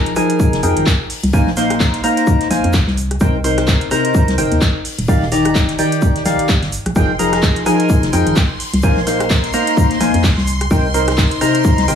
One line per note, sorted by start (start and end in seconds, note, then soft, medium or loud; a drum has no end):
0.00 0.14 F3 medium
0.00 0.14 D#4 medium
0.00 0.14 G#4 medium
0.00 0.14 A#4 medium
0.00 0.14 A#5 medium
0.06 closed hi-hat medium
0.16 0.61 F3 loud
0.16 0.61 D#4 medium
0.16 0.61 G#4 medium
0.16 0.61 A#4 medium
0.16 0.61 G#5 loud
0.16 cross-stick medium
0.16 open hi-hat medium
0.16 shaker medium
0.30 closed hi-hat medium
0.40 kick loud
0.40 shaker medium
0.53 0.61 F1 medium
0.53 snare medium
0.53 closed hi-hat medium
0.63 0.73 F2 medium
0.63 0.87 F3 medium
0.63 0.87 D#4 medium
0.63 0.87 G#4 medium
0.63 0.87 A#4 medium
0.63 0.87 G5 medium
0.63 open hi-hat loud
0.63 shaker medium
0.77 0.84 G#1 medium
0.77 closed hi-hat medium
0.86 kick loud
0.86 snare loud
0.86 clap loud
0.86 shaker medium
1.10 open hi-hat medium
1.23 1.31 C2 medium
1.23 closed hi-hat medium
1.33 1.50 A#3 loud
1.33 1.50 D#4 medium
1.33 1.50 A#4 medium
1.33 1.50 C5 medium
1.33 1.50 G#5 loud
1.33 kick loud
1.33 shaker medium
1.47 2.00 A#1 loud
1.47 snare soft
1.57 2.01 A#3 medium
1.57 2.01 D#4 medium
1.57 2.01 A#4 medium
1.57 2.01 C5 medium
1.57 2.01 C6 medium
1.57 snare medium
1.57 open hi-hat loud
1.57 shaker medium
1.70 cross-stick medium
1.70 closed hi-hat medium
1.70 closed hi-hat soft
1.80 kick loud
1.80 snare loud
1.80 clap loud
1.80 shaker medium
1.94 snare soft
1.94 closed hi-hat medium
2.04 2.48 A#3 loud
2.04 2.48 D#4 medium
2.04 2.48 A#4 medium
2.04 2.48 C5 medium
2.04 2.48 A#5 loud
2.04 open hi-hat medium
2.04 shaker medium
2.17 closed hi-hat medium
2.17 closed hi-hat soft
2.27 kick loud
2.27 shaker medium
2.41 snare soft
2.41 closed hi-hat medium
2.51 2.61 A#1 medium
2.51 2.75 A#3 medium
2.51 2.75 D#4 medium
2.51 2.75 A#4 medium
2.51 2.75 C5 medium
2.51 2.75 G#5 medium
2.51 snare medium
2.51 open hi-hat loud
2.51 shaker medium
2.64 2.81 F2 medium
2.64 closed hi-hat medium
2.73 kick loud
2.73 snare loud
2.73 clap loud
2.73 shaker medium
2.87 3.17 C2 loud
2.87 snare medium
2.97 open hi-hat medium
2.97 shaker medium
3.11 cross-stick medium
3.11 closed hi-hat medium
3.20 3.76 C2 loud
3.20 3.37 C3 loud
3.20 3.37 D#4 medium
3.20 3.37 A#4 medium
3.20 3.37 C5 medium
3.20 3.37 G5 loud
3.20 kick loud
3.20 shaker medium
3.44 3.89 C3 medium
3.44 3.89 D#4 medium
3.44 3.89 A#4 medium
3.44 3.89 C5 medium
3.44 3.89 C6 medium
3.44 open hi-hat loud
3.44 shaker medium
3.57 cross-stick medium
3.57 snare soft
3.57 closed hi-hat medium
3.67 kick loud
3.67 snare loud
3.67 clap loud
3.67 shaker loud
3.81 closed hi-hat soft
3.91 4.36 C3 loud
3.91 4.36 D#4 medium
3.91 4.36 A#4 medium
3.91 4.36 C5 medium
3.91 4.36 A#5 loud
3.91 cross-stick medium
3.91 open hi-hat medium
3.91 shaker medium
4.05 closed hi-hat medium
4.15 kick loud
4.15 shaker medium
4.28 4.36 C2 medium
4.28 snare soft
4.28 closed hi-hat medium
4.38 4.48 G1 medium
4.38 4.62 C3 medium
4.38 4.62 D#4 medium
4.38 4.62 A#4 medium
4.38 4.62 C5 medium
4.38 4.62 G5 medium
4.38 open hi-hat loud
4.38 shaker medium
4.52 4.59 D#2 medium
4.52 closed hi-hat medium
4.61 kick loud
4.61 snare loud
4.61 clap loud
4.61 shaker medium
4.85 open hi-hat medium
4.99 5.06 D#1 medium
4.99 closed hi-hat medium
5.08 5.25 D#3 medium
5.08 5.25 D#4 medium
5.08 5.25 G4 medium
5.08 5.25 D5 medium
5.08 5.25 F5 loud
5.08 kick loud
5.08 shaker medium
5.22 5.75 D#1 loud
5.22 snare soft
5.32 5.76 D#3 medium
5.32 5.76 D#4 medium
5.32 5.76 G4 medium
5.32 5.76 D5 medium
5.32 5.76 A#5 medium
5.32 snare medium
5.32 open hi-hat loud
5.32 shaker medium
5.45 cross-stick medium
5.45 closed hi-hat soft
5.45 closed hi-hat medium
5.55 kick loud
5.55 snare loud
5.55 clap loud
5.55 shaker medium
5.69 snare soft
5.69 closed hi-hat medium
5.79 6.23 D#3 loud
5.79 6.23 D#4 medium
5.79 6.23 G4 medium
5.79 6.23 D5 medium
5.79 6.23 G5 loud
5.79 open hi-hat medium
5.79 shaker medium
5.92 closed hi-hat medium
5.92 closed hi-hat soft
6.02 kick loud
6.02 shaker medium
6.16 snare soft
6.16 closed hi-hat soft
6.26 6.36 A#1 medium
6.26 6.50 D#3 medium
6.26 6.50 D#4 medium
6.26 6.50 G4 medium
6.26 6.50 D5 medium
6.26 6.50 F5 medium
6.26 snare medium
6.26 open hi-hat loud
6.26 shaker medium
6.39 closed hi-hat medium
6.49 kick loud
6.49 snare loud
6.49 clap loud
6.49 shaker medium
6.63 6.79 G1 medium
6.63 snare medium
6.63 closed hi-hat soft
6.72 open hi-hat medium
6.72 shaker medium
6.86 6.93 A#1 medium
6.86 cross-stick medium
6.86 closed hi-hat medium
6.96 7.51 F1 loud
6.96 7.12 F3 medium
6.96 7.12 D#4 medium
6.96 7.12 G#4 medium
6.96 7.12 A#4 medium
6.96 7.12 G5 loud
6.96 11.95 C6 medium
6.96 kick loud
6.96 shaker medium
7.19 7.64 F3 medium
7.19 7.64 D#4 medium
7.19 7.64 G#4 medium
7.19 7.64 A#4 medium
7.19 7.64 A#5 medium
7.19 open hi-hat loud
7.19 shaker medium
7.33 cross-stick medium
7.33 snare medium
7.33 closed hi-hat medium
7.43 kick loud
7.43 snare loud
7.43 clap loud
7.43 shaker medium
7.56 closed hi-hat soft
7.66 8.11 F3 loud
7.66 8.11 D#4 medium
7.66 8.11 G#4 medium
7.66 8.11 A#4 medium
7.66 8.11 G#5 loud
7.66 cross-stick medium
7.66 open hi-hat medium
7.66 shaker medium
7.80 closed hi-hat medium
7.89 kick loud
7.89 shaker medium
8.03 8.11 F1 medium
8.03 snare soft
8.03 closed hi-hat medium
8.13 8.23 F2 medium
8.13 8.37 F3 medium
8.13 8.37 D#4 medium
8.13 8.37 G#4 medium
8.13 8.37 A#4 medium
8.13 8.37 G5 medium
8.13 open hi-hat loud
8.13 shaker medium
8.27 8.34 G#1 medium
8.27 closed hi-hat medium
8.36 kick loud
8.36 snare loud
8.36 clap loud
8.36 shaker medium
8.60 open hi-hat medium
8.74 8.81 C2 medium
8.74 closed hi-hat medium
8.83 9.00 A#3 medium
8.83 9.00 D#4 medium
8.83 9.00 A#4 medium
8.83 9.00 C5 medium
8.83 9.00 G#5 loud
8.83 kick loud
8.83 shaker medium
8.97 9.50 A#1 loud
8.97 snare soft
9.07 9.51 A#3 medium
9.07 9.51 D#4 medium
9.07 9.51 A#4 medium
9.07 9.51 C5 medium
9.07 9.51 C6 medium
9.07 snare medium
9.07 open hi-hat loud
9.07 shaker medium
9.20 cross-stick medium
9.20 closed hi-hat soft
9.20 closed hi-hat medium
9.30 kick loud
9.30 snare loud
9.30 clap loud
9.30 shaker medium
9.44 snare medium
9.44 closed hi-hat medium
9.53 9.98 A#3 loud
9.53 9.98 D#4 loud
9.53 9.98 A#4 medium
9.53 9.98 C5 medium
9.53 9.98 A#5 loud
9.53 open hi-hat medium
9.53 shaker medium
9.67 closed hi-hat medium
9.67 closed hi-hat soft
9.77 kick loud
9.77 shaker loud
9.91 snare soft
9.91 closed hi-hat medium
10.01 10.11 A#1 medium
10.01 10.25 A#3 medium
10.01 10.25 D#4 medium
10.01 10.25 A#4 medium
10.01 10.25 C5 medium
10.01 10.25 G#5 medium
10.01 snare medium
10.01 open hi-hat loud
10.01 shaker medium
10.14 10.31 F2 medium
10.14 closed hi-hat medium
10.24 kick loud
10.24 snare loud
10.24 clap loud
10.24 shaker medium
10.38 10.67 C2 loud
10.38 snare medium
10.47 open hi-hat medium
10.47 shaker medium
10.61 cross-stick medium
10.61 closed hi-hat medium
10.71 11.26 C2 loud
10.71 10.87 C3 medium
10.71 10.87 D#4 medium
10.71 10.87 A#4 medium
10.71 10.87 C5 medium
10.71 10.87 G5 loud
10.71 kick loud
10.71 shaker medium
10.94 11.39 C3 medium
10.94 11.39 D#4 medium
10.94 11.39 A#4 medium
10.94 11.39 C5 medium
10.94 11.39 C6 medium
10.94 open hi-hat loud
10.94 shaker medium
11.08 cross-stick medium
11.08 snare medium
11.08 closed hi-hat medium
11.18 kick loud
11.18 snare loud
11.18 clap loud
11.18 shaker medium
11.31 closed hi-hat medium
11.41 11.86 C3 loud
11.41 11.86 D#4 medium
11.41 11.86 A#4 medium
11.41 11.86 C5 medium
11.41 11.86 A#5 loud
11.41 cross-stick medium
11.41 open hi-hat medium
11.41 shaker medium
11.55 closed hi-hat medium
11.65 kick loud
11.65 shaker medium
11.78 11.86 C2 medium
11.78 snare soft
11.78 closed hi-hat medium
11.88 11.95 G1 medium
11.88 11.95 C3 medium
11.88 11.95 D#4 medium
11.88 11.95 A#4 medium
11.88 11.95 C5 medium
11.88 11.95 G5 medium
11.88 open hi-hat loud
11.88 shaker medium